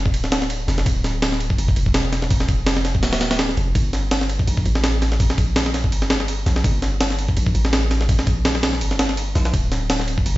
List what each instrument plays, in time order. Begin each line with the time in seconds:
Already playing: 808-style bass F1
0.06 kick
0.14 808-style bass D1, ride
0.24 snare
0.32 snare, ride
0.42 snare
0.50 ride
0.68 808-style bass F1, snare, ride
0.78 snare
0.86 808-style bass D1, kick, ride
1.04 snare, ride
1.22 snare, open hi-hat
1.32 snare
1.40 ride
1.50 kick
1.58 808-style bass F1, ride
1.68 kick
1.76 808-style bass E1, ride
1.86 kick
1.94 snare, ride
2.13 snare, ride
2.22 snare
2.30 kick, ride
2.40 snare
2.48 808-style bass F1, kick, ride
2.67 snare, ride
2.77 snare
2.85 snare, ride
2.95 kick
3.03 808-style bass D1, snare, open hi-hat
3.13 snare, open hi-hat
3.21 snare, open hi-hat
3.31 snare, open hi-hat
3.39 snare, open hi-hat
3.49 snare
3.57 808-style bass F1, ride
3.75 808-style bass G1, kick, ride
3.93 snare, ride
4.11 snare, open hi-hat
4.21 snare
4.29 ride
4.39 kick
4.47 808-style bass A#1, ride
4.57 kick
4.66 808-style bass A1, ride
4.75 snare
4.84 snare, ride
5.02 snare, ride
5.12 snare
5.20 kick, ride
5.30 snare
5.38 808-style bass A#1, kick, ride
5.56 snare, ride
5.66 snare
5.74 snare, ride
5.84 kick
5.92 808-style bass G1, ride
6.02 snare
6.10 snare, ride
6.20 snare
6.28 ride
6.46 808-style bass A#1, snare, ride
6.56 snare
6.64 808-style bass G1, kick, ride
6.82 snare, ride
7.01 snare, open hi-hat
7.10 snare
7.19 ride
7.28 kick
7.37 808-style bass A#1, ride
7.47 kick
7.55 808-style bass A1, ride
7.65 snare
7.73 snare, ride
7.91 snare, ride
8.01 snare
8.09 kick, ride
8.19 snare
8.27 808-style bass A#1, kick, ride
8.45 snare, ride
8.55 snare
8.63 snare, open hi-hat
8.73 snare
8.81 808-style bass G1, ride
8.91 snare
8.99 snare, ride
9.09 snare
9.17 ride
9.35 808-style bass A#1, snare, ride
9.45 snare
9.54 808-style bass D1, kick, ride
9.72 snare, ride
9.90 snare, open hi-hat
10.00 snare
10.08 ride
10.18 kick
10.26 808-style bass F1, ride